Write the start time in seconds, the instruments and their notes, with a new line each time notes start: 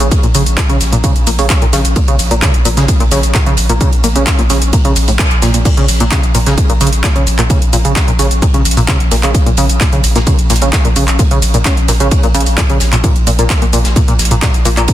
0.00 sub bass A#1, synth arpeggio sound C#3, closed hi-hat, shaker
0.11 kick, closed hi-hat, ride, shaker
0.23 sub bass A#1, synth arpeggio sound A#2, closed hi-hat, shaker
0.34 sub bass A#1, synth arpeggio sound C#3, open hi-hat, ride, shaker
0.46 sub bass A#1, closed hi-hat, shaker
0.57 synth arpeggio sound A#2, kick, snare, clap, closed hi-hat, ride, shaker
0.69 sub bass A#1, synth arpeggio sound C#3, closed hi-hat, shaker
0.81 sub bass A#1, snare, open hi-hat, ride, shaker
0.93 sub bass A#1, synth arpeggio sound A#2, closed hi-hat, shaker
1.04 synth arpeggio sound C#3, kick, closed hi-hat, ride, shaker
1.16 sub bass A#1, closed hi-hat, shaker
1.27 sub bass A#1, synth arpeggio sound A#2, open hi-hat, ride, shaker
1.39 sub bass A#1, synth arpeggio sound C#3, open hi-hat, shaker
1.50 kick, snare, clap, closed hi-hat, ride, shaker
1.62 sub bass A#1, synth arpeggio sound A#2, closed hi-hat, shaker
1.73 sub bass A#1, synth arpeggio sound C#3, snare, open hi-hat, ride, shaker
1.85 sub bass A#1, closed hi-hat, ride, shaker
1.96 synth arpeggio sound A#2, kick, closed hi-hat, ride, shaker
2.08 sub bass A#1, synth arpeggio sound C#3, closed hi-hat, shaker
2.19 sub bass A#1, open hi-hat, ride, shaker
2.31 sub bass A#1, synth arpeggio sound A#2, closed hi-hat, shaker
2.42 synth arpeggio sound C#3, kick, snare, clap, closed hi-hat, ride, shaker
2.54 sub bass A#1, closed hi-hat, shaker
2.65 sub bass A#1, synth arpeggio sound A#2, open hi-hat, ride, shaker
2.77 sub bass A#1, synth arpeggio sound C#3, snare, closed hi-hat, shaker
2.88 kick, closed hi-hat, ride, shaker
3.00 sub bass A#1, synth arpeggio sound A#2, closed hi-hat, shaker
3.11 sub bass A#1, synth arpeggio sound C#3, snare, open hi-hat, ride, shaker
3.23 sub bass A#1, closed hi-hat, shaker
3.34 synth arpeggio sound A#2, kick, snare, clap, closed hi-hat, ride, shaker
3.46 sub bass A#1, synth arpeggio sound C#3, closed hi-hat, shaker
3.57 sub bass A#1, open hi-hat, ride, shaker
3.69 sub bass A#1, synth arpeggio sound A#2, closed hi-hat, shaker
3.81 synth arpeggio sound C#3, kick, closed hi-hat, ride, shaker
3.93 sub bass A#1, closed hi-hat, shaker
4.04 sub bass A#1, synth arpeggio sound A#2, open hi-hat, ride, shaker
4.16 sub bass A#1, synth arpeggio sound C#3, closed hi-hat, shaker
4.27 kick, snare, clap, closed hi-hat, ride, shaker
4.39 sub bass A#1, synth arpeggio sound A#2, closed hi-hat, shaker
4.50 sub bass A#1, synth arpeggio sound C#3, snare, open hi-hat, ride, shaker
4.62 sub bass A#1, closed hi-hat, shaker
4.73 synth arpeggio sound A#2, kick, closed hi-hat, ride, shaker
4.85 sub bass A#1, synth arpeggio sound C#3, closed hi-hat, shaker
4.96 sub bass A#1, open hi-hat, ride, shaker
5.08 sub bass A#1, synth arpeggio sound A2, open hi-hat, shaker
5.19 synth arpeggio sound A#2, kick, snare, clap, closed hi-hat, shaker
5.31 sub bass A#1, closed hi-hat, shaker
5.42 sub bass A#1, synth arpeggio sound A#2, snare, open hi-hat, ride, shaker
5.54 sub bass A#1, synth arpeggio sound A#2, closed hi-hat, ride, shaker
5.65 synth arpeggio sound A#2, kick, closed hi-hat, crash, ride, shaker
5.77 sub bass A#1, synth arpeggio sound C#3, closed hi-hat, shaker
5.88 sub bass A#1, open hi-hat, ride, shaker
6.00 sub bass A#1, synth arpeggio sound A#2, closed hi-hat, shaker
6.11 synth arpeggio sound C#3, kick, snare, clap, closed hi-hat, ride, shaker
6.23 sub bass A#1, closed hi-hat, shaker
6.35 sub bass A#1, synth arpeggio sound A#2, open hi-hat, ride, shaker
6.46 sub bass A#1, synth arpeggio sound C#3, snare, closed hi-hat, shaker
6.58 kick, closed hi-hat, ride, shaker
6.69 sub bass A#1, synth arpeggio sound A#2, closed hi-hat, shaker
6.81 sub bass A#1, synth arpeggio sound C#3, snare, open hi-hat, ride, shaker
6.87 closed hi-hat
6.93 sub bass A#1, closed hi-hat, shaker
7.04 synth arpeggio sound A#2, kick, snare, clap, closed hi-hat, ride, shaker
7.16 sub bass A#1, synth arpeggio sound C#3, closed hi-hat, shaker
7.27 sub bass A#1, open hi-hat, ride, shaker
7.39 sub bass A#1, synth arpeggio sound A#2, clap, closed hi-hat, shaker
7.50 synth arpeggio sound C#3, kick, closed hi-hat, ride, shaker
7.62 sub bass A#1, closed hi-hat, shaker
7.73 sub bass A#1, synth arpeggio sound A#2, open hi-hat, ride, shaker
7.85 sub bass A#1, synth arpeggio sound C#3, closed hi-hat, shaker
7.96 kick, snare, clap, closed hi-hat, ride, shaker
8.08 sub bass A#1, synth arpeggio sound A#2, closed hi-hat, shaker
8.19 sub bass A#1, synth arpeggio sound C#3, snare, open hi-hat, ride, shaker
8.31 sub bass A#1, closed hi-hat, shaker
8.42 synth arpeggio sound A#2, kick, closed hi-hat, ride, shaker
8.54 sub bass A#1, synth arpeggio sound C#3, closed hi-hat, shaker
8.65 sub bass A#1, open hi-hat, ride, shaker
8.71 closed hi-hat
8.77 sub bass A#1, synth arpeggio sound A#2, open hi-hat, shaker
8.88 synth arpeggio sound C#3, kick, snare, clap, closed hi-hat, ride, shaker
9.00 sub bass A#1, closed hi-hat, shaker
9.11 sub bass A#1, synth arpeggio sound A#2, snare, open hi-hat, ride, shaker
9.23 sub bass A#1, synth arpeggio sound C#3, clap, closed hi-hat, ride, shaker
9.34 kick, closed hi-hat, ride, shaker
9.46 sub bass A#1, synth arpeggio sound A#2, closed hi-hat, shaker
9.57 sub bass A#1, synth arpeggio sound C#3, open hi-hat, ride, shaker
9.69 sub bass A#1, closed hi-hat, shaker
9.80 synth arpeggio sound A#2, kick, snare, clap, closed hi-hat, ride, shaker
9.92 sub bass A#1, synth arpeggio sound C#3, closed hi-hat, shaker
10.04 sub bass A#1, open hi-hat, ride, shaker
10.15 sub bass A#1, synth arpeggio sound A#2, snare, closed hi-hat, shaker
10.27 synth arpeggio sound C#3, kick, closed hi-hat, ride, shaker
10.39 sub bass A#1, closed hi-hat, shaker
10.50 sub bass A#1, synth arpeggio sound A#2, snare, open hi-hat, ride, shaker
10.56 closed hi-hat
10.62 sub bass A#1, synth arpeggio sound C#3, closed hi-hat, shaker
10.73 kick, snare, clap, closed hi-hat, ride, shaker
10.85 sub bass A#1, synth arpeggio sound A#2, closed hi-hat, shaker
10.96 sub bass A#1, synth arpeggio sound C#3, open hi-hat, ride, shaker
11.08 sub bass A#1, clap, closed hi-hat, shaker
11.19 synth arpeggio sound A#2, kick, closed hi-hat, ride, shaker
11.31 sub bass A#1, synth arpeggio sound C#3, closed hi-hat, shaker
11.42 sub bass A#1, open hi-hat, ride, shaker
11.54 sub bass A#1, synth arpeggio sound A#2, closed hi-hat, shaker
11.65 synth arpeggio sound C#3, kick, snare, clap, closed hi-hat, ride, shaker
11.77 sub bass A#1, closed hi-hat, shaker
11.88 sub bass A#1, synth arpeggio sound A#2, snare, open hi-hat, ride, shaker
12.00 sub bass A#1, synth arpeggio sound C#3, closed hi-hat, shaker
12.11 kick, closed hi-hat, ride, shaker
12.23 sub bass A#1, synth arpeggio sound A#2, closed hi-hat, shaker
12.35 sub bass A#1, synth arpeggio sound C#3, open hi-hat, ride, shaker
12.40 closed hi-hat
12.46 sub bass A#1, open hi-hat, shaker
12.58 synth arpeggio sound A#2, kick, snare, clap, closed hi-hat, ride, shaker
12.69 sub bass A#1, synth arpeggio sound C#3, closed hi-hat, shaker
12.80 sub bass A#1, snare, open hi-hat, ride, shaker
12.93 sub bass A#1, synth arpeggio sound A#2, clap, closed hi-hat, ride, shaker
13.04 synth arpeggio sound A#2, kick, closed hi-hat, ride, shaker
13.16 sub bass A#1, closed hi-hat, shaker
13.27 sub bass A#1, synth arpeggio sound A#2, open hi-hat, ride, shaker
13.39 sub bass A#1, synth arpeggio sound A#2, closed hi-hat, shaker
13.50 kick, snare, clap, closed hi-hat, ride, shaker
13.62 sub bass A#1, synth arpeggio sound A#2, closed hi-hat, shaker
13.73 sub bass A#1, synth arpeggio sound A#2, open hi-hat, ride, shaker
13.84 sub bass A#1, snare, closed hi-hat, shaker
13.96 synth arpeggio sound A#2, kick, closed hi-hat, ride, shaker
14.08 sub bass A#1, synth arpeggio sound A#2, closed hi-hat, shaker
14.19 sub bass A#1, snare, open hi-hat, ride, shaker
14.25 closed hi-hat
14.31 sub bass A#1, synth arpeggio sound A#2, closed hi-hat, shaker
14.42 synth arpeggio sound A#2, kick, snare, clap, closed hi-hat, ride, shaker
14.54 sub bass A#1, closed hi-hat, shaker
14.65 sub bass A#1, synth arpeggio sound A#2, open hi-hat, ride, shaker
14.77 sub bass A#1, synth arpeggio sound A#2, clap, closed hi-hat, shaker
14.88 kick, closed hi-hat, ride, shaker